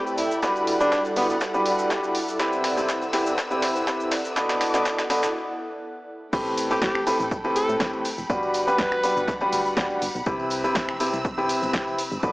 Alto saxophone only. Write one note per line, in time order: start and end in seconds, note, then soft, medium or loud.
0.18 0.40 E4 medium
0.80 1.02 D4 medium
1.17 1.25 B3 medium
1.30 1.37 B3 medium
6.71 6.80 G4 medium
6.82 7.04 G4 medium
7.56 7.78 A4 medium
8.67 9.36 B4 loud